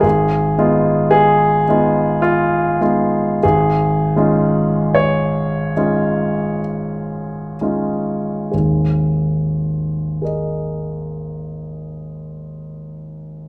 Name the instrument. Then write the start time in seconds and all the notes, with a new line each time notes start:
grand piano
0.01 G#1 G#4
0.58 G#3 B3 D#4 F4
1.11 G#4
1.68 G#3 B3 D#4 F4
2.22 F4
2.81 G#3 B3 D#4 F4
3.43 G#1 G#4
4.16 G#3 C#4 D#4 F4
4.95 C#5
5.77 G#3 C#4 D#4 F4
7.61 G#3 C#4 D#4 F4
8.51 G#1 D#2 G#4
10.22 G#4 A#4 D#5